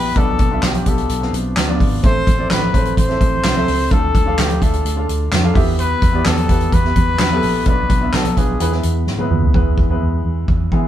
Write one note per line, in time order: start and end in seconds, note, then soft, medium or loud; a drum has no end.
0.00 0.12 A#1 medium
0.00 0.18 E3 medium
0.00 0.15 B3 medium
0.00 0.18 E4 medium
0.00 0.18 G4 medium
0.00 0.19 B4 loud
0.00 0.18 E5 medium
0.00 0.15 G5 medium
0.15 0.35 B1 medium
0.15 0.82 B2 medium
0.15 0.49 B3 medium
0.15 0.49 D4 medium
0.15 0.49 F4 medium
0.15 0.64 A4 loud
0.15 0.50 D5 medium
0.15 kick loud
0.15 closed hi-hat medium
0.39 kick medium
0.39 closed hi-hat medium
0.51 0.84 B3 medium
0.51 0.84 D4 medium
0.51 0.84 F4 medium
0.51 0.85 E5 medium
0.63 0.82 B1 medium
0.63 0.90 G4 medium
0.63 snare medium
0.63 clap medium
0.63 closed hi-hat medium
0.74 closed hi-hat medium
0.85 1.05 B1 medium
0.85 1.19 B3 medium
0.85 1.19 D4 medium
0.85 1.19 F4 medium
0.85 1.20 G4 medium
0.85 1.34 A4 medium
0.85 kick medium
0.85 closed hi-hat medium
0.98 closed hi-hat soft
1.09 1.29 B1 medium
1.09 closed hi-hat medium
1.21 1.65 B3 medium
1.21 1.27 C4 soft
1.21 1.66 F4 medium
1.21 1.66 F5 medium
1.21 snare soft
1.27 1.67 D4 soft
1.33 1.52 B1 loud
1.33 closed hi-hat medium
1.57 1.76 D2 medium
1.57 snare loud
1.57 clap medium
1.57 closed hi-hat medium
1.68 2.01 B3 medium
1.68 2.01 D4 medium
1.68 2.01 F4 medium
1.68 2.02 D5 medium
1.80 1.99 G#1 medium
1.80 kick medium
1.80 open hi-hat medium
2.03 2.23 A1 loud
2.03 2.70 A2 medium
2.03 2.36 C4 medium
2.03 2.36 E4 medium
2.03 2.37 A4 medium
2.03 2.48 C5 loud
2.03 2.37 E5 medium
2.03 kick loud
2.03 closed hi-hat medium
2.27 2.46 A1 medium
2.27 kick medium
2.27 closed hi-hat medium
2.38 2.71 C4 medium
2.38 2.71 E4 medium
2.38 2.72 A4 medium
2.38 2.72 D5 medium
2.50 2.69 A1 medium
2.50 2.94 B4 loud
2.50 snare loud
2.50 clap medium
2.50 closed hi-hat medium
2.73 2.93 A1 medium
2.73 3.07 C4 medium
2.73 3.07 E4 medium
2.73 3.07 A4 medium
2.73 3.07 C5 medium
2.73 kick medium
2.73 closed hi-hat medium
2.85 closed hi-hat soft
2.97 3.17 A1 medium
2.97 3.93 C5 loud
2.97 kick medium
2.97 closed hi-hat medium
3.09 3.53 C4 medium
3.09 3.53 E4 soft
3.09 3.53 A4 medium
3.09 3.54 E5 medium
3.09 snare soft
3.21 3.40 A1 medium
3.21 kick medium
3.21 closed hi-hat medium
3.44 3.63 C2 medium
3.44 snare loud
3.44 clap medium
3.44 closed hi-hat medium
3.55 3.88 C4 medium
3.55 3.89 E4 medium
3.55 3.89 A4 medium
3.55 3.89 E5 medium
3.68 3.87 C#2 medium
3.68 open hi-hat medium
3.90 4.10 D2 medium
3.90 4.57 D3 medium
3.90 4.23 D4 medium
3.90 4.24 F4 medium
3.90 4.24 A4 medium
3.90 4.41 A4 medium
3.90 4.24 F5 medium
3.90 kick medium
3.90 closed hi-hat medium
4.15 4.34 D2 medium
4.15 kick loud
4.15 closed hi-hat medium
4.26 4.59 D4 medium
4.26 4.59 F4 medium
4.26 4.60 A4 medium
4.26 4.60 F5 medium
4.38 4.57 D2 medium
4.38 4.64 G4 medium
4.38 snare loud
4.38 clap medium
4.38 closed hi-hat medium
4.50 closed hi-hat medium
4.61 4.81 D2 medium
4.61 4.94 D4 medium
4.61 4.95 F4 medium
4.61 4.95 A4 medium
4.61 5.09 A4 medium
4.61 4.95 E5 medium
4.61 kick medium
4.61 closed hi-hat medium
4.74 closed hi-hat soft
4.85 5.04 D2 loud
4.85 closed hi-hat medium
4.96 5.40 D4 medium
4.96 5.41 F4 medium
4.96 5.41 A4 medium
4.96 5.41 F5 medium
5.09 5.28 D2 medium
5.09 closed hi-hat medium
5.32 5.51 F2 medium
5.32 snare loud
5.32 clap medium
5.32 closed hi-hat medium
5.43 5.55 D4 medium
5.43 5.55 F4 medium
5.43 5.55 A4 medium
5.43 5.56 F5 medium
5.54 5.94 E2 loud
5.54 6.21 E3 medium
5.54 6.09 B3 medium
5.54 6.10 E4 medium
5.54 6.10 G4 medium
5.54 6.11 E5 medium
5.54 kick loud
5.54 open hi-hat medium
5.79 6.27 B4 loud
5.79 closed hi-hat medium
6.02 6.21 E2 medium
6.02 kick medium
6.02 closed hi-hat medium
6.13 6.46 B3 medium
6.13 6.47 E4 medium
6.13 6.47 G4 medium
6.13 6.48 D5 medium
6.25 6.45 E2 loud
6.25 6.75 A4 medium
6.25 snare loud
6.25 clap medium
6.25 closed hi-hat medium
6.37 closed hi-hat medium
6.48 6.68 E2 medium
6.48 6.82 B3 medium
6.48 6.82 E4 medium
6.48 6.82 G4 medium
6.48 6.83 B4 medium
6.48 kick medium
6.48 closed hi-hat medium
6.61 closed hi-hat soft
6.72 6.92 E2 loud
6.72 7.67 B4 loud
6.72 kick medium
6.72 closed hi-hat medium
6.84 7.28 B3 medium
6.84 7.28 E4 medium
6.84 7.29 G4 medium
6.84 7.29 E5 medium
6.84 snare soft
6.96 7.15 E2 loud
6.96 kick medium
6.96 closed hi-hat medium
7.19 7.39 E2 medium
7.19 snare loud
7.19 clap medium
7.19 closed hi-hat medium
7.31 7.64 B3 medium
7.31 7.65 E4 medium
7.31 7.65 G4 medium
7.31 7.65 A4 medium
7.43 7.62 A#1 medium
7.43 open hi-hat medium
7.66 7.86 B1 medium
7.66 8.33 B2 medium
7.66 7.99 B3 medium
7.66 8.00 D4 medium
7.66 8.00 F4 medium
7.66 8.16 B4 loud
7.66 8.00 D5 medium
7.66 kick loud
7.66 closed hi-hat medium
7.90 8.09 B1 medium
7.90 kick medium
7.90 closed hi-hat medium
8.01 8.34 B3 medium
8.01 8.35 D4 medium
8.01 8.35 F4 medium
8.01 8.35 E5 medium
8.13 8.33 B1 medium
8.13 8.39 A4 medium
8.13 snare medium
8.13 clap medium
8.13 closed hi-hat medium
8.25 closed hi-hat medium
8.36 8.56 B1 medium
8.36 8.59 B3 medium
8.36 8.60 D4 medium
8.36 8.61 F4 medium
8.36 8.84 G#4 medium
8.36 8.60 B4 medium
8.36 kick medium
8.36 closed hi-hat medium
8.59 8.80 E2 medium
8.59 9.27 E3 medium
8.59 8.70 G#3 medium
8.59 8.70 B3 medium
8.59 8.71 E4 medium
8.59 8.72 B4 medium
8.59 closed hi-hat medium
8.71 9.16 G#3 medium
8.71 9.16 B3 medium
8.71 9.17 E4 medium
8.71 9.17 B4 medium
8.71 snare soft
8.83 9.03 E2 medium
8.83 closed hi-hat medium
9.07 9.27 G#2 medium
9.07 snare soft
9.18 9.52 G#3 medium
9.18 9.52 B3 medium
9.18 9.53 E4 medium
9.18 9.53 B4 medium
9.18 high tom medium
9.30 9.50 D#2 medium
9.30 mid tom medium
9.42 floor tom medium
9.54 9.74 E2 medium
9.54 10.21 E3 medium
9.54 9.87 G#3 medium
9.54 9.88 B3 medium
9.54 9.88 E4 medium
9.54 9.88 B4 medium
9.54 kick medium
9.78 9.97 E2 medium
9.78 kick medium
9.89 10.67 G#3 medium
9.89 10.67 B3 medium
9.89 10.68 E4 medium
9.89 10.68 B4 medium
10.01 10.20 E2 loud
10.25 10.44 E2 medium
10.48 10.68 E2 medium
10.48 kick medium
10.72 10.88 E3 medium
10.72 10.88 G#3 medium
10.72 10.88 B3 medium
10.72 10.88 E4 medium
10.72 10.88 G#4 medium
10.72 kick medium